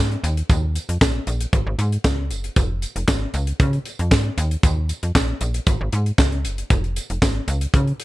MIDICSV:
0, 0, Header, 1, 3, 480
1, 0, Start_track
1, 0, Tempo, 517241
1, 459, Time_signature, 4, 2, 24, 8
1, 7465, End_track
2, 0, Start_track
2, 0, Title_t, "FM bass"
2, 0, Program_c, 0, 39
2, 0, Note_on_c, 0, 44, 85
2, 156, Note_off_c, 0, 44, 0
2, 219, Note_on_c, 0, 39, 100
2, 396, Note_off_c, 0, 39, 0
2, 460, Note_on_c, 0, 39, 111
2, 730, Note_off_c, 0, 39, 0
2, 825, Note_on_c, 0, 41, 75
2, 909, Note_off_c, 0, 41, 0
2, 940, Note_on_c, 0, 34, 77
2, 1116, Note_off_c, 0, 34, 0
2, 1181, Note_on_c, 0, 34, 87
2, 1357, Note_off_c, 0, 34, 0
2, 1419, Note_on_c, 0, 32, 101
2, 1513, Note_off_c, 0, 32, 0
2, 1546, Note_on_c, 0, 32, 94
2, 1629, Note_off_c, 0, 32, 0
2, 1658, Note_on_c, 0, 44, 104
2, 1835, Note_off_c, 0, 44, 0
2, 1898, Note_on_c, 0, 37, 84
2, 2139, Note_on_c, 0, 30, 85
2, 2153, Note_off_c, 0, 37, 0
2, 2316, Note_off_c, 0, 30, 0
2, 2380, Note_on_c, 0, 29, 108
2, 2650, Note_off_c, 0, 29, 0
2, 2745, Note_on_c, 0, 29, 76
2, 2828, Note_off_c, 0, 29, 0
2, 2859, Note_on_c, 0, 32, 89
2, 3035, Note_off_c, 0, 32, 0
2, 3099, Note_on_c, 0, 37, 101
2, 3276, Note_off_c, 0, 37, 0
2, 3339, Note_on_c, 0, 49, 107
2, 3516, Note_off_c, 0, 49, 0
2, 3707, Note_on_c, 0, 41, 90
2, 3818, Note_on_c, 0, 44, 86
2, 3832, Note_off_c, 0, 41, 0
2, 3995, Note_off_c, 0, 44, 0
2, 4061, Note_on_c, 0, 39, 106
2, 4237, Note_off_c, 0, 39, 0
2, 4300, Note_on_c, 0, 39, 113
2, 4570, Note_off_c, 0, 39, 0
2, 4669, Note_on_c, 0, 41, 72
2, 4751, Note_off_c, 0, 41, 0
2, 4779, Note_on_c, 0, 34, 83
2, 4956, Note_off_c, 0, 34, 0
2, 5021, Note_on_c, 0, 34, 91
2, 5197, Note_off_c, 0, 34, 0
2, 5260, Note_on_c, 0, 32, 100
2, 5353, Note_off_c, 0, 32, 0
2, 5390, Note_on_c, 0, 32, 92
2, 5472, Note_off_c, 0, 32, 0
2, 5502, Note_on_c, 0, 44, 102
2, 5678, Note_off_c, 0, 44, 0
2, 5738, Note_on_c, 0, 37, 95
2, 5982, Note_on_c, 0, 30, 90
2, 5996, Note_off_c, 0, 37, 0
2, 6157, Note_off_c, 0, 30, 0
2, 6222, Note_on_c, 0, 29, 104
2, 6491, Note_off_c, 0, 29, 0
2, 6590, Note_on_c, 0, 29, 70
2, 6672, Note_off_c, 0, 29, 0
2, 6699, Note_on_c, 0, 32, 95
2, 6876, Note_off_c, 0, 32, 0
2, 6940, Note_on_c, 0, 37, 103
2, 7116, Note_off_c, 0, 37, 0
2, 7180, Note_on_c, 0, 49, 101
2, 7357, Note_off_c, 0, 49, 0
2, 7465, End_track
3, 0, Start_track
3, 0, Title_t, "Drums"
3, 107, Note_on_c, 9, 42, 33
3, 200, Note_off_c, 9, 42, 0
3, 223, Note_on_c, 9, 42, 77
3, 226, Note_on_c, 9, 54, 45
3, 316, Note_off_c, 9, 42, 0
3, 319, Note_off_c, 9, 54, 0
3, 347, Note_on_c, 9, 42, 53
3, 440, Note_off_c, 9, 42, 0
3, 460, Note_on_c, 9, 36, 102
3, 460, Note_on_c, 9, 42, 78
3, 467, Note_on_c, 9, 54, 53
3, 552, Note_off_c, 9, 42, 0
3, 553, Note_off_c, 9, 36, 0
3, 560, Note_off_c, 9, 54, 0
3, 701, Note_on_c, 9, 42, 59
3, 702, Note_on_c, 9, 54, 51
3, 793, Note_off_c, 9, 42, 0
3, 795, Note_off_c, 9, 54, 0
3, 827, Note_on_c, 9, 42, 53
3, 920, Note_off_c, 9, 42, 0
3, 940, Note_on_c, 9, 36, 115
3, 945, Note_on_c, 9, 38, 109
3, 945, Note_on_c, 9, 39, 81
3, 946, Note_on_c, 9, 54, 85
3, 1032, Note_off_c, 9, 36, 0
3, 1038, Note_off_c, 9, 38, 0
3, 1038, Note_off_c, 9, 39, 0
3, 1039, Note_off_c, 9, 54, 0
3, 1179, Note_on_c, 9, 42, 65
3, 1184, Note_on_c, 9, 54, 45
3, 1272, Note_off_c, 9, 42, 0
3, 1277, Note_off_c, 9, 54, 0
3, 1304, Note_on_c, 9, 42, 63
3, 1397, Note_off_c, 9, 42, 0
3, 1420, Note_on_c, 9, 36, 115
3, 1424, Note_on_c, 9, 42, 87
3, 1512, Note_off_c, 9, 36, 0
3, 1517, Note_off_c, 9, 42, 0
3, 1659, Note_on_c, 9, 42, 70
3, 1664, Note_on_c, 9, 54, 35
3, 1751, Note_off_c, 9, 42, 0
3, 1757, Note_off_c, 9, 54, 0
3, 1786, Note_on_c, 9, 42, 47
3, 1879, Note_off_c, 9, 42, 0
3, 1898, Note_on_c, 9, 36, 102
3, 1899, Note_on_c, 9, 54, 69
3, 1901, Note_on_c, 9, 38, 98
3, 1901, Note_on_c, 9, 39, 66
3, 1990, Note_off_c, 9, 36, 0
3, 1992, Note_off_c, 9, 54, 0
3, 1994, Note_off_c, 9, 38, 0
3, 1994, Note_off_c, 9, 39, 0
3, 2140, Note_on_c, 9, 42, 68
3, 2146, Note_on_c, 9, 54, 49
3, 2232, Note_off_c, 9, 42, 0
3, 2239, Note_off_c, 9, 54, 0
3, 2265, Note_on_c, 9, 42, 54
3, 2357, Note_off_c, 9, 42, 0
3, 2378, Note_on_c, 9, 42, 82
3, 2380, Note_on_c, 9, 36, 111
3, 2387, Note_on_c, 9, 54, 58
3, 2471, Note_off_c, 9, 42, 0
3, 2472, Note_off_c, 9, 36, 0
3, 2480, Note_off_c, 9, 54, 0
3, 2619, Note_on_c, 9, 42, 56
3, 2625, Note_on_c, 9, 54, 49
3, 2712, Note_off_c, 9, 42, 0
3, 2717, Note_off_c, 9, 54, 0
3, 2746, Note_on_c, 9, 42, 54
3, 2839, Note_off_c, 9, 42, 0
3, 2859, Note_on_c, 9, 36, 107
3, 2862, Note_on_c, 9, 38, 97
3, 2862, Note_on_c, 9, 39, 87
3, 2866, Note_on_c, 9, 54, 77
3, 2951, Note_off_c, 9, 36, 0
3, 2955, Note_off_c, 9, 38, 0
3, 2955, Note_off_c, 9, 39, 0
3, 2958, Note_off_c, 9, 54, 0
3, 3097, Note_on_c, 9, 42, 65
3, 3104, Note_on_c, 9, 54, 50
3, 3190, Note_off_c, 9, 42, 0
3, 3197, Note_off_c, 9, 54, 0
3, 3222, Note_on_c, 9, 42, 60
3, 3315, Note_off_c, 9, 42, 0
3, 3339, Note_on_c, 9, 36, 117
3, 3342, Note_on_c, 9, 42, 82
3, 3431, Note_off_c, 9, 36, 0
3, 3435, Note_off_c, 9, 42, 0
3, 3463, Note_on_c, 9, 42, 33
3, 3555, Note_off_c, 9, 42, 0
3, 3577, Note_on_c, 9, 42, 71
3, 3585, Note_on_c, 9, 54, 34
3, 3670, Note_off_c, 9, 42, 0
3, 3678, Note_off_c, 9, 54, 0
3, 3705, Note_on_c, 9, 42, 42
3, 3798, Note_off_c, 9, 42, 0
3, 3818, Note_on_c, 9, 36, 105
3, 3821, Note_on_c, 9, 54, 78
3, 3822, Note_on_c, 9, 38, 94
3, 3822, Note_on_c, 9, 39, 68
3, 3910, Note_off_c, 9, 36, 0
3, 3914, Note_off_c, 9, 54, 0
3, 3915, Note_off_c, 9, 38, 0
3, 3915, Note_off_c, 9, 39, 0
3, 4062, Note_on_c, 9, 42, 85
3, 4065, Note_on_c, 9, 54, 46
3, 4154, Note_off_c, 9, 42, 0
3, 4158, Note_off_c, 9, 54, 0
3, 4187, Note_on_c, 9, 42, 49
3, 4280, Note_off_c, 9, 42, 0
3, 4300, Note_on_c, 9, 36, 112
3, 4301, Note_on_c, 9, 42, 85
3, 4306, Note_on_c, 9, 54, 59
3, 4393, Note_off_c, 9, 36, 0
3, 4394, Note_off_c, 9, 42, 0
3, 4399, Note_off_c, 9, 54, 0
3, 4540, Note_on_c, 9, 54, 49
3, 4541, Note_on_c, 9, 42, 56
3, 4633, Note_off_c, 9, 42, 0
3, 4633, Note_off_c, 9, 54, 0
3, 4666, Note_on_c, 9, 42, 53
3, 4759, Note_off_c, 9, 42, 0
3, 4779, Note_on_c, 9, 36, 101
3, 4781, Note_on_c, 9, 54, 79
3, 4786, Note_on_c, 9, 38, 88
3, 4786, Note_on_c, 9, 39, 84
3, 4872, Note_off_c, 9, 36, 0
3, 4874, Note_off_c, 9, 54, 0
3, 4878, Note_off_c, 9, 38, 0
3, 4878, Note_off_c, 9, 39, 0
3, 5018, Note_on_c, 9, 42, 61
3, 5021, Note_on_c, 9, 54, 47
3, 5111, Note_off_c, 9, 42, 0
3, 5114, Note_off_c, 9, 54, 0
3, 5144, Note_on_c, 9, 42, 60
3, 5237, Note_off_c, 9, 42, 0
3, 5257, Note_on_c, 9, 54, 29
3, 5260, Note_on_c, 9, 36, 108
3, 5263, Note_on_c, 9, 42, 90
3, 5350, Note_off_c, 9, 54, 0
3, 5352, Note_off_c, 9, 36, 0
3, 5356, Note_off_c, 9, 42, 0
3, 5499, Note_on_c, 9, 42, 72
3, 5591, Note_off_c, 9, 42, 0
3, 5625, Note_on_c, 9, 42, 39
3, 5718, Note_off_c, 9, 42, 0
3, 5738, Note_on_c, 9, 36, 105
3, 5738, Note_on_c, 9, 54, 69
3, 5743, Note_on_c, 9, 38, 83
3, 5743, Note_on_c, 9, 39, 72
3, 5831, Note_off_c, 9, 36, 0
3, 5831, Note_off_c, 9, 54, 0
3, 5836, Note_off_c, 9, 38, 0
3, 5836, Note_off_c, 9, 39, 0
3, 5867, Note_on_c, 9, 42, 30
3, 5959, Note_off_c, 9, 42, 0
3, 5983, Note_on_c, 9, 42, 76
3, 5984, Note_on_c, 9, 54, 45
3, 6076, Note_off_c, 9, 42, 0
3, 6077, Note_off_c, 9, 54, 0
3, 6108, Note_on_c, 9, 42, 49
3, 6200, Note_off_c, 9, 42, 0
3, 6221, Note_on_c, 9, 36, 110
3, 6221, Note_on_c, 9, 42, 72
3, 6226, Note_on_c, 9, 54, 53
3, 6313, Note_off_c, 9, 42, 0
3, 6314, Note_off_c, 9, 36, 0
3, 6319, Note_off_c, 9, 54, 0
3, 6347, Note_on_c, 9, 42, 34
3, 6440, Note_off_c, 9, 42, 0
3, 6461, Note_on_c, 9, 54, 50
3, 6464, Note_on_c, 9, 42, 66
3, 6554, Note_off_c, 9, 54, 0
3, 6556, Note_off_c, 9, 42, 0
3, 6589, Note_on_c, 9, 42, 46
3, 6681, Note_off_c, 9, 42, 0
3, 6700, Note_on_c, 9, 36, 110
3, 6705, Note_on_c, 9, 54, 83
3, 6706, Note_on_c, 9, 38, 99
3, 6706, Note_on_c, 9, 39, 80
3, 6793, Note_off_c, 9, 36, 0
3, 6797, Note_off_c, 9, 54, 0
3, 6799, Note_off_c, 9, 38, 0
3, 6799, Note_off_c, 9, 39, 0
3, 6940, Note_on_c, 9, 42, 64
3, 6942, Note_on_c, 9, 54, 53
3, 7033, Note_off_c, 9, 42, 0
3, 7035, Note_off_c, 9, 54, 0
3, 7064, Note_on_c, 9, 42, 59
3, 7157, Note_off_c, 9, 42, 0
3, 7180, Note_on_c, 9, 36, 105
3, 7184, Note_on_c, 9, 42, 81
3, 7273, Note_off_c, 9, 36, 0
3, 7276, Note_off_c, 9, 42, 0
3, 7307, Note_on_c, 9, 42, 30
3, 7400, Note_off_c, 9, 42, 0
3, 7421, Note_on_c, 9, 42, 78
3, 7465, Note_off_c, 9, 42, 0
3, 7465, End_track
0, 0, End_of_file